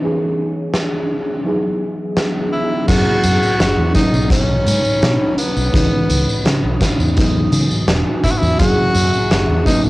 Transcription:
0.00 1.38 E3 medium
0.00 1.44 E3 medium
0.00 1.38 B3 medium
0.00 1.38 C#4 medium
0.00 1.42 D#4 medium
0.00 1.39 D#4 medium
0.00 1.44 G#4 medium
0.00 1.41 C#5 medium
0.04 1.39 G#4 medium
0.74 snare loud
1.44 2.87 E3 medium
1.44 2.81 F#3 medium
1.44 2.87 F#3 medium
1.44 2.81 B3 medium
1.44 2.87 B3 medium
1.44 2.81 D#4 medium
1.44 2.82 E4 medium
1.44 2.87 G#4 medium
1.44 2.82 G#4 medium
1.44 2.87 D#5 medium
2.17 snare loud
2.52 2.86 E4 medium
2.87 3.03 F#2 loud
2.87 3.88 F#3 medium
2.87 3.88 A#3 medium
2.87 3.88 C#4 medium
2.87 3.94 E4 medium
2.87 3.89 E4 medium
2.87 3.91 F#4 loud
2.87 3.94 G#4 medium
2.87 3.89 G#4 medium
2.87 3.94 F#5 medium
2.87 5.71 A#5 medium
2.87 kick loud
2.87 closed hi-hat medium
2.87 crash loud
2.87 tambourine soft
3.23 3.39 F#2 medium
3.23 closed hi-hat medium
3.23 tambourine medium
3.43 tambourine soft
3.60 3.74 F#1 loud
3.60 snare loud
3.60 closed hi-hat medium
3.60 tambourine soft
3.78 3.92 E2 medium
3.93 5.66 F#3 medium
3.93 5.66 A#3 medium
3.93 5.67 B3 medium
3.93 5.67 C#4 medium
3.93 5.72 D#4 medium
3.93 4.28 D#4 loud
3.93 5.67 D#4 loud
3.93 7.13 C#5 medium
3.93 7.13 B5 medium
3.93 kick loud
3.93 closed hi-hat medium
3.93 tambourine medium
4.14 4.61 B1 medium
4.14 tambourine soft
4.30 5.34 C#4 loud
4.30 kick loud
4.30 closed hi-hat loud
4.30 tambourine soft
4.67 4.81 G#2 loud
4.67 closed hi-hat medium
4.67 tambourine medium
4.85 muted fingered electric bass stroke soft
4.85 tambourine soft
5.02 5.17 B2 medium
5.02 snare loud
5.02 closed hi-hat medium
5.02 tambourine soft
5.38 6.77 B3 medium
5.38 closed hi-hat medium
5.38 tambourine medium
5.56 5.70 B1 loud
5.56 tambourine soft
5.72 5.89 C#2 loud
5.72 7.09 E3 medium
5.72 7.15 E3 medium
5.72 7.09 G#3 medium
5.72 7.10 B3 medium
5.72 7.10 C#4 medium
5.72 7.11 D#4 medium
5.72 8.57 D#6 medium
5.72 kick loud
5.72 closed hi-hat medium
5.72 tambourine soft
6.09 6.24 C#2 medium
6.09 closed hi-hat medium
6.09 tambourine medium
6.28 muted fingered electric bass stroke soft
6.28 tambourine soft
6.45 6.60 C#3 loud
6.45 snare loud
6.45 closed hi-hat medium
6.45 tambourine soft
6.63 6.78 B1 medium
6.81 kick loud
6.81 snare medium
6.81 closed hi-hat medium
6.81 tambourine medium
6.99 7.47 E2 medium
6.99 tambourine soft
7.15 8.52 E3 medium
7.15 8.52 F#3 medium
7.15 8.53 G#3 medium
7.15 8.53 B3 medium
7.15 8.53 D#4 medium
7.15 9.64 F#4 medium
7.15 9.64 G#5 medium
7.15 kick loud
7.15 closed hi-hat loud
7.15 tambourine soft
7.52 7.67 C#3 loud
7.52 closed hi-hat medium
7.52 tambourine medium
7.70 muted fingered electric bass stroke soft
7.70 tambourine soft
7.88 8.03 E1 loud
7.88 snare loud
7.88 closed hi-hat medium
7.88 tambourine soft
8.24 8.33 E4 loud
8.24 kick medium
8.24 closed hi-hat medium
8.24 tambourine medium
8.31 8.40 F#4 medium
8.38 8.56 E2 loud
8.38 8.59 E4 loud
8.43 tambourine soft
8.58 8.75 F#2 loud
8.58 9.59 F#3 medium
8.58 9.59 A#3 medium
8.58 9.60 C#4 medium
8.58 9.60 E4 medium
8.58 9.63 F#4 loud
8.58 9.60 G#4 medium
8.58 9.65 E5 medium
8.58 9.66 A#5 medium
8.58 kick loud
8.58 closed hi-hat loud
8.58 tambourine soft
8.95 9.10 F#2 medium
8.95 closed hi-hat medium
8.95 tambourine medium
9.14 tambourine soft
9.31 9.46 F#1 loud
9.31 snare loud
9.31 closed hi-hat medium
9.31 tambourine soft
9.49 9.63 E2 medium
9.65 9.89 F#3 medium
9.65 9.89 A#3 medium
9.65 9.89 B3 medium
9.65 9.89 C#4 medium
9.65 9.82 D#4 loud
9.65 9.89 D#4 medium
9.65 9.89 D#4 loud
9.65 9.89 C#5 medium
9.65 9.89 A#5 medium
9.65 9.89 B5 medium
9.65 kick loud
9.65 closed hi-hat medium
9.65 tambourine medium
9.84 9.89 B1 medium
9.84 tambourine soft

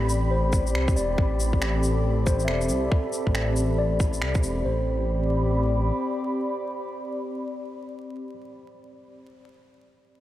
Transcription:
0.00 0.75 A1 medium
0.00 4.65 C4 medium
0.00 4.65 G4 medium
0.00 4.66 D5 medium
0.00 1.58 B5 medium
0.00 4.66 B5 medium
0.09 shaker medium
0.31 1.56 C5 medium
0.53 kick loud
0.53 shaker medium
0.67 shaker soft
0.73 0.97 C2 medium
0.73 finger snap loud
0.88 kick loud
0.88 shaker soft
0.96 1.16 E1 medium
0.96 2.21 D5 medium
0.96 shaker medium
1.18 2.47 A1 loud
1.18 kick loud
1.40 shaker medium
1.46 4.65 A4 medium
1.53 kick medium
1.62 finger snap loud
1.83 shaker medium
2.26 3.52 C5 medium
2.26 kick loud
2.26 shaker soft
2.40 shaker soft
2.45 2.71 E1 medium
2.45 3.67 E5 soft
2.45 finger snap loud
2.61 shaker soft
2.69 2.90 C2 medium
2.69 shaker medium
2.92 kick loud
3.13 shaker soft
3.27 4.23 A1 medium
3.27 kick medium
3.35 finger snap loud
3.56 shaker medium
3.78 4.83 D5 medium
4.00 kick loud
4.00 shaker medium
4.13 shaker soft
4.21 4.45 C2 medium
4.21 finger snap loud
4.35 kick loud
4.35 shaker soft
4.43 4.64 E1 medium
4.43 shaker soft
4.65 5.92 A1 medium
4.65 8.34 C4 medium
4.65 8.33 C5 medium
4.75 8.43 G4 medium
4.81 8.48 B5 medium
4.87 8.54 D5 medium

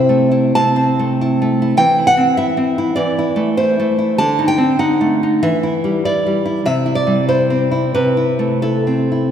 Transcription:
0.00 0.52 C3 medium
0.00 0.68 C4 medium
0.00 0.30 E4 medium
0.00 0.53 E5 medium
0.09 0.98 A3 medium
0.31 1.20 E4 medium
0.55 1.76 C3 medium
0.55 1.75 A5 loud
0.76 1.69 C4 medium
0.99 1.41 A3 medium
1.21 1.61 E4 medium
1.42 1.80 A3 medium
1.62 1.81 E4 medium
1.77 2.94 E3 medium
1.77 2.07 G5 loud
1.98 2.37 E4 medium
2.07 2.36 F#5 loud
2.17 2.56 C4 medium
2.37 2.77 E4 medium
2.37 2.95 E5 loud
2.57 2.98 C4 medium
2.78 2.98 E4 medium
2.96 4.15 E3 medium
2.96 3.55 D5 loud
3.19 3.56 E4 medium
3.36 3.78 A3 medium
3.57 3.97 E4 medium
3.57 4.17 C5 loud
3.80 4.20 A3 medium
3.99 4.18 E4 medium
4.18 5.39 D3 medium
4.18 4.47 A5 loud
4.39 4.58 D#4 medium
4.48 4.79 G5 loud
4.58 4.79 C4 medium
4.79 5.22 D#4 medium
4.79 5.40 F#5 loud
5.01 5.42 A3 medium
5.23 5.44 D#4 medium
5.43 6.64 E3 medium
5.43 6.03 E5 loud
5.63 6.04 E4 medium
5.84 6.25 G3 medium
6.05 6.44 E4 medium
6.05 6.65 D5 loud
6.27 6.68 G3 medium
6.46 6.66 E4 medium
6.66 7.91 C3 medium
6.66 6.95 E5 loud
6.86 7.27 E4 medium
6.95 7.27 D5 medium
7.07 7.95 G3 medium
7.29 7.70 E4 medium
7.29 7.92 C5 medium
7.50 7.95 C4 medium
7.71 7.95 E4 medium
7.95 9.31 C3 medium
7.95 8.61 B4 loud
8.17 8.62 E4 medium
8.39 9.31 A3 medium
8.62 9.10 E4 medium
8.62 9.31 A4 medium
8.87 9.31 C4 soft
9.12 9.31 E4 soft

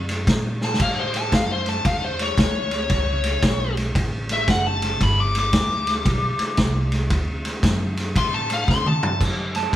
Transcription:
0.00 0.25 F#2 medium
0.09 snare soft
0.09 ride medium
0.27 0.78 A#2 loud
0.27 kick medium
0.27 snare loud
0.27 ride medium
0.61 0.80 A5 loud
0.61 snare medium
0.74 snare medium
0.80 1.30 A2 medium
0.80 0.98 F5 loud
0.80 kick medium
0.80 snare soft
0.80 crash medium
0.80 ride medium
1.00 1.15 C5 loud
1.14 1.32 A5 loud
1.14 snare soft
1.14 ride medium
1.32 1.83 F#2 medium
1.32 1.50 F5 medium
1.32 kick medium
1.32 snare loud
1.32 ride medium
1.52 1.68 C5 loud
1.66 1.85 A5 loud
1.66 snare soft
1.66 ride medium
1.85 2.36 E2 medium
1.85 2.02 F5 loud
1.85 kick medium
1.85 snare soft
1.85 ride medium
2.04 2.20 C5 medium
2.19 3.75 C#5 loud
2.19 snare soft
2.19 ride medium
2.37 2.88 D2 loud
2.37 kick medium
2.37 snare loud
2.37 ride medium
2.71 snare soft
2.71 ride medium
2.89 3.40 C#2 medium
2.89 kick medium
2.89 snare soft
2.89 ride medium
3.24 snare soft
3.24 ride medium
3.42 3.93 B1 medium
3.42 kick medium
3.42 snare loud
3.42 ride medium
3.77 snare soft
3.77 ride medium
3.95 4.46 A1 medium
3.95 kick medium
3.95 snare soft
3.95 ride medium
4.29 4.48 E5 loud
4.29 snare soft
4.29 ride medium
4.48 4.98 F#1 loud
4.48 4.67 F#5 medium
4.48 kick medium
4.48 snare loud
4.48 ride medium
4.67 5.00 A5 loud
4.82 snare soft
4.82 ride medium
5.00 5.51 G1 medium
5.00 5.20 B5 medium
5.00 kick medium
5.00 snare soft
5.00 ride medium
5.20 5.36 D6 loud
5.35 snare soft
5.35 ride medium
5.39 6.90 D6 loud
5.53 6.03 D2 medium
5.53 kick medium
5.53 snare loud
5.53 ride medium
5.87 snare soft
5.87 ride medium
6.05 6.36 B1 medium
6.05 kick loud
6.05 snare soft
6.05 ride medium
6.38 muted upright bass stroke soft
6.38 snare soft
6.38 ride medium
6.57 7.08 C2 loud
6.57 kick medium
6.57 snare loud
6.57 ride medium
6.92 snare soft
6.92 ride medium
7.10 7.61 D2 medium
7.10 kick medium
7.10 snare soft
7.10 ride medium
7.45 snare soft
7.45 ride medium
7.63 8.13 F#2 medium
7.63 kick medium
7.63 snare loud
7.63 ride medium
7.97 snare soft
7.97 ride medium
8.15 8.66 A2 medium
8.15 8.33 C6 loud
8.15 kick medium
8.15 snare soft
8.15 ride medium
8.34 8.50 A5 loud
8.50 8.69 F5 medium
8.50 snare soft
8.50 ride medium
8.68 9.18 C#3 loud
8.68 8.86 C6 loud
8.68 kick medium
8.68 snare medium
8.86 9.20 A5 loud
8.86 mid tom medium
9.03 floor tom loud
9.20 9.71 F#2 medium
9.20 kick medium
9.20 snare soft
9.20 crash loud
9.55 9.72 A5 medium
9.55 snare soft
9.55 ride medium
9.73 9.76 E2 medium

